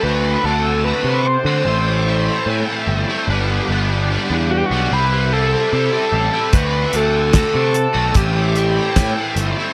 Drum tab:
HH |--------|--------|xxxxxxxx|
SD |--------|--------|--o---o-|
BD |--------|--------|o-o-o-o-|